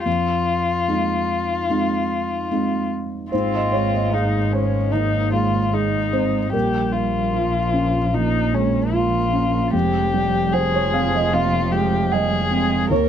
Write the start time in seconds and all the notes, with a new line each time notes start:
0.05 F2 F4
0.88 G#3 C4 D#4
1.70 G#3 C4 D#4
2.51 G#3 C4 D#4
3.31 G#1 G#2 C4 F4 C5
3.54 D#5
3.72 G#3 C#5
3.94 D#5
4.13 G#3 D#4 G#4 F5
4.53 C#4 C5
4.92 D#3 A#3 D#4 D#5
5.33 G#3 F4
5.73 G#3 D#4 G#4
6.13 C4 C5
6.52 A#1 A#2 G3 G4 A#4
6.92 F4
7.34 F3 F4
7.74 C#4
8.13 F3 A#3 D#4
8.54 G#3 C#4
8.93 A#3 F4
9.33 C#4
9.72 F1 F2 G#3 G4
10.13 G3
10.53 F3 G#4 C5 G5
10.74 C#5
10.94 C4 F5
11.14 D#5
11.33 C3 F4 F5
11.72 G#3 G4
12.11 G3 G#4 D#5 G5
12.51 G#3 C4
12.90 D#2 A#3 A#4 C#5